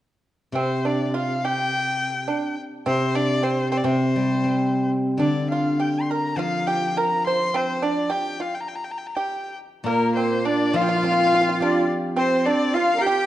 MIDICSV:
0, 0, Header, 1, 6, 480
1, 0, Start_track
1, 0, Tempo, 584226
1, 439, Time_signature, 2, 2, 24, 8
1, 9067, Tempo, 570342
1, 10941, End_track
2, 0, Start_track
2, 0, Title_t, "Erhu"
2, 0, Program_c, 0, 110
2, 454, Note_on_c, 0, 72, 63
2, 704, Note_on_c, 0, 74, 55
2, 716, Note_off_c, 0, 72, 0
2, 937, Note_off_c, 0, 74, 0
2, 951, Note_on_c, 0, 77, 72
2, 1192, Note_on_c, 0, 79, 90
2, 1204, Note_off_c, 0, 77, 0
2, 2129, Note_off_c, 0, 79, 0
2, 2365, Note_on_c, 0, 72, 88
2, 2587, Note_on_c, 0, 74, 87
2, 2599, Note_off_c, 0, 72, 0
2, 2822, Note_on_c, 0, 72, 76
2, 2834, Note_off_c, 0, 74, 0
2, 3045, Note_off_c, 0, 72, 0
2, 3050, Note_on_c, 0, 72, 76
2, 3096, Note_on_c, 0, 74, 58
2, 3108, Note_off_c, 0, 72, 0
2, 3157, Note_on_c, 0, 72, 72
2, 3169, Note_off_c, 0, 74, 0
2, 4015, Note_off_c, 0, 72, 0
2, 4261, Note_on_c, 0, 74, 67
2, 4492, Note_off_c, 0, 74, 0
2, 4517, Note_on_c, 0, 77, 61
2, 4764, Note_on_c, 0, 79, 59
2, 4776, Note_off_c, 0, 77, 0
2, 4941, Note_on_c, 0, 84, 46
2, 4953, Note_off_c, 0, 79, 0
2, 5010, Note_on_c, 0, 82, 70
2, 5022, Note_off_c, 0, 84, 0
2, 5238, Note_on_c, 0, 77, 82
2, 5251, Note_off_c, 0, 82, 0
2, 5477, Note_on_c, 0, 79, 75
2, 5489, Note_off_c, 0, 77, 0
2, 5728, Note_on_c, 0, 82, 77
2, 5740, Note_off_c, 0, 79, 0
2, 5959, Note_off_c, 0, 82, 0
2, 5964, Note_on_c, 0, 84, 82
2, 6209, Note_on_c, 0, 72, 78
2, 6221, Note_off_c, 0, 84, 0
2, 6430, Note_on_c, 0, 74, 68
2, 6443, Note_off_c, 0, 72, 0
2, 6663, Note_on_c, 0, 79, 69
2, 6675, Note_off_c, 0, 74, 0
2, 6907, Note_on_c, 0, 77, 70
2, 6920, Note_off_c, 0, 79, 0
2, 7020, Note_on_c, 0, 79, 55
2, 7032, Note_off_c, 0, 77, 0
2, 7071, Note_on_c, 0, 82, 57
2, 7083, Note_off_c, 0, 79, 0
2, 7128, Note_on_c, 0, 79, 53
2, 7140, Note_off_c, 0, 82, 0
2, 7189, Note_on_c, 0, 82, 59
2, 7201, Note_off_c, 0, 79, 0
2, 7261, Note_on_c, 0, 79, 57
2, 7274, Note_off_c, 0, 82, 0
2, 7322, Note_on_c, 0, 82, 60
2, 7334, Note_off_c, 0, 79, 0
2, 7378, Note_on_c, 0, 79, 54
2, 7391, Note_off_c, 0, 82, 0
2, 7448, Note_on_c, 0, 82, 52
2, 7460, Note_off_c, 0, 79, 0
2, 7523, Note_on_c, 0, 79, 59
2, 7535, Note_off_c, 0, 82, 0
2, 7850, Note_off_c, 0, 79, 0
2, 8093, Note_on_c, 0, 70, 82
2, 8323, Note_off_c, 0, 70, 0
2, 8338, Note_on_c, 0, 72, 76
2, 8588, Note_on_c, 0, 74, 77
2, 8601, Note_off_c, 0, 72, 0
2, 8840, Note_on_c, 0, 77, 97
2, 8852, Note_off_c, 0, 74, 0
2, 9790, Note_off_c, 0, 77, 0
2, 10022, Note_on_c, 0, 72, 85
2, 10259, Note_on_c, 0, 74, 83
2, 10272, Note_off_c, 0, 72, 0
2, 10499, Note_on_c, 0, 77, 92
2, 10512, Note_off_c, 0, 74, 0
2, 10731, Note_on_c, 0, 79, 97
2, 10743, Note_off_c, 0, 77, 0
2, 10941, Note_off_c, 0, 79, 0
2, 10941, End_track
3, 0, Start_track
3, 0, Title_t, "Erhu"
3, 0, Program_c, 1, 110
3, 8111, Note_on_c, 1, 70, 64
3, 8348, Note_on_c, 1, 72, 63
3, 8361, Note_off_c, 1, 70, 0
3, 8592, Note_on_c, 1, 74, 76
3, 8604, Note_off_c, 1, 72, 0
3, 8830, Note_on_c, 1, 77, 85
3, 8843, Note_off_c, 1, 74, 0
3, 8897, Note_on_c, 1, 79, 72
3, 8909, Note_off_c, 1, 77, 0
3, 8947, Note_on_c, 1, 77, 96
3, 8959, Note_off_c, 1, 79, 0
3, 9547, Note_off_c, 1, 77, 0
3, 9563, Note_on_c, 1, 74, 71
3, 9777, Note_off_c, 1, 74, 0
3, 10048, Note_on_c, 1, 72, 81
3, 10272, Note_on_c, 1, 74, 75
3, 10285, Note_off_c, 1, 72, 0
3, 10507, Note_on_c, 1, 77, 93
3, 10520, Note_off_c, 1, 74, 0
3, 10740, Note_on_c, 1, 79, 94
3, 10753, Note_off_c, 1, 77, 0
3, 10941, Note_off_c, 1, 79, 0
3, 10941, End_track
4, 0, Start_track
4, 0, Title_t, "Accordion"
4, 0, Program_c, 2, 21
4, 8095, Note_on_c, 2, 58, 72
4, 8589, Note_on_c, 2, 62, 72
4, 8600, Note_off_c, 2, 58, 0
4, 8813, Note_off_c, 2, 62, 0
4, 8826, Note_on_c, 2, 65, 83
4, 9749, Note_off_c, 2, 65, 0
4, 10017, Note_on_c, 2, 60, 77
4, 10501, Note_on_c, 2, 65, 82
4, 10514, Note_off_c, 2, 60, 0
4, 10672, Note_off_c, 2, 65, 0
4, 10678, Note_on_c, 2, 70, 52
4, 10728, Note_on_c, 2, 67, 90
4, 10740, Note_off_c, 2, 70, 0
4, 10941, Note_off_c, 2, 67, 0
4, 10941, End_track
5, 0, Start_track
5, 0, Title_t, "Pipa"
5, 0, Program_c, 3, 105
5, 455, Note_on_c, 3, 60, 61
5, 676, Note_off_c, 3, 60, 0
5, 699, Note_on_c, 3, 62, 60
5, 918, Note_off_c, 3, 62, 0
5, 937, Note_on_c, 3, 65, 60
5, 1155, Note_off_c, 3, 65, 0
5, 1189, Note_on_c, 3, 67, 61
5, 1857, Note_off_c, 3, 67, 0
5, 1871, Note_on_c, 3, 62, 56
5, 2096, Note_off_c, 3, 62, 0
5, 2351, Note_on_c, 3, 60, 76
5, 2568, Note_off_c, 3, 60, 0
5, 2591, Note_on_c, 3, 62, 79
5, 2806, Note_off_c, 3, 62, 0
5, 2816, Note_on_c, 3, 60, 68
5, 3036, Note_off_c, 3, 60, 0
5, 3057, Note_on_c, 3, 60, 65
5, 3147, Note_off_c, 3, 60, 0
5, 3157, Note_on_c, 3, 60, 56
5, 3982, Note_off_c, 3, 60, 0
5, 4268, Note_on_c, 3, 62, 58
5, 4496, Note_off_c, 3, 62, 0
5, 4535, Note_on_c, 3, 65, 54
5, 4750, Note_off_c, 3, 65, 0
5, 4762, Note_on_c, 3, 67, 59
5, 4983, Note_off_c, 3, 67, 0
5, 5018, Note_on_c, 3, 70, 58
5, 5232, Note_off_c, 3, 70, 0
5, 5250, Note_on_c, 3, 65, 64
5, 5468, Note_off_c, 3, 65, 0
5, 5484, Note_on_c, 3, 67, 63
5, 5705, Note_off_c, 3, 67, 0
5, 5727, Note_on_c, 3, 70, 71
5, 5946, Note_off_c, 3, 70, 0
5, 5974, Note_on_c, 3, 72, 65
5, 6184, Note_off_c, 3, 72, 0
5, 6197, Note_on_c, 3, 60, 72
5, 6411, Note_off_c, 3, 60, 0
5, 6428, Note_on_c, 3, 62, 68
5, 6645, Note_off_c, 3, 62, 0
5, 6652, Note_on_c, 3, 67, 71
5, 6874, Note_off_c, 3, 67, 0
5, 6901, Note_on_c, 3, 65, 49
5, 7007, Note_off_c, 3, 65, 0
5, 7530, Note_on_c, 3, 67, 63
5, 7831, Note_off_c, 3, 67, 0
5, 8104, Note_on_c, 3, 58, 69
5, 8329, Note_off_c, 3, 58, 0
5, 8354, Note_on_c, 3, 60, 56
5, 8576, Note_off_c, 3, 60, 0
5, 8589, Note_on_c, 3, 62, 66
5, 8813, Note_off_c, 3, 62, 0
5, 8825, Note_on_c, 3, 65, 72
5, 8876, Note_off_c, 3, 65, 0
5, 8886, Note_on_c, 3, 65, 55
5, 8936, Note_off_c, 3, 65, 0
5, 8946, Note_on_c, 3, 65, 64
5, 8998, Note_off_c, 3, 65, 0
5, 9008, Note_on_c, 3, 65, 53
5, 9063, Note_off_c, 3, 65, 0
5, 9073, Note_on_c, 3, 65, 61
5, 9129, Note_off_c, 3, 65, 0
5, 9138, Note_on_c, 3, 65, 48
5, 9192, Note_off_c, 3, 65, 0
5, 9204, Note_on_c, 3, 65, 53
5, 9251, Note_off_c, 3, 65, 0
5, 9261, Note_on_c, 3, 65, 55
5, 9315, Note_off_c, 3, 65, 0
5, 9327, Note_on_c, 3, 65, 57
5, 9371, Note_off_c, 3, 65, 0
5, 9381, Note_on_c, 3, 65, 52
5, 9436, Note_off_c, 3, 65, 0
5, 9449, Note_on_c, 3, 65, 60
5, 9501, Note_off_c, 3, 65, 0
5, 9560, Note_on_c, 3, 62, 67
5, 9776, Note_off_c, 3, 62, 0
5, 10017, Note_on_c, 3, 60, 70
5, 10244, Note_off_c, 3, 60, 0
5, 10268, Note_on_c, 3, 62, 64
5, 10489, Note_off_c, 3, 62, 0
5, 10512, Note_on_c, 3, 65, 68
5, 10678, Note_off_c, 3, 65, 0
5, 10708, Note_on_c, 3, 70, 55
5, 10754, Note_off_c, 3, 70, 0
5, 10774, Note_on_c, 3, 67, 72
5, 10941, Note_off_c, 3, 67, 0
5, 10941, End_track
6, 0, Start_track
6, 0, Title_t, "Guzheng"
6, 0, Program_c, 4, 107
6, 430, Note_on_c, 4, 48, 48
6, 1874, Note_off_c, 4, 48, 0
6, 2349, Note_on_c, 4, 48, 50
6, 3144, Note_off_c, 4, 48, 0
6, 3154, Note_on_c, 4, 48, 53
6, 3416, Note_on_c, 4, 55, 39
6, 3647, Note_on_c, 4, 60, 38
6, 4252, Note_on_c, 4, 50, 49
6, 4260, Note_off_c, 4, 48, 0
6, 4389, Note_off_c, 4, 55, 0
6, 4628, Note_off_c, 4, 60, 0
6, 5227, Note_on_c, 4, 53, 47
6, 5712, Note_off_c, 4, 50, 0
6, 6654, Note_off_c, 4, 53, 0
6, 8082, Note_on_c, 4, 46, 56
6, 8819, Note_on_c, 4, 53, 56
6, 9059, Note_on_c, 4, 60, 37
6, 9304, Note_on_c, 4, 65, 46
6, 9536, Note_off_c, 4, 46, 0
6, 9543, Note_on_c, 4, 67, 42
6, 10021, Note_off_c, 4, 60, 0
6, 10260, Note_off_c, 4, 53, 0
6, 10264, Note_off_c, 4, 65, 0
6, 10503, Note_off_c, 4, 67, 0
6, 10941, End_track
0, 0, End_of_file